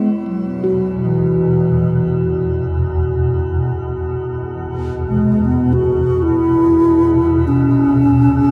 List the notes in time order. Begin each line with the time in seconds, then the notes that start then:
Already playing: E2 B2 G#3 E4
0.27 F#3
0.64 F#4
1.05 E3
5.09 G#3
5.45 B3
5.73 F#4
6.23 E4
7.47 C#4